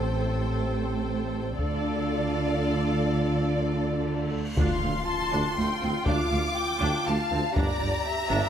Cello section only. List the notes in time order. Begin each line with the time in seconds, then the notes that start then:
Already playing: A2
1.58 D3
4.57 D2
4.83 D2
5.33 D2
5.58 D2
5.83 D2
6.08 D2
6.33 D2
6.82 D2
7.08 D2
7.32 D2
7.58 G2
7.83 G2
8.32 G2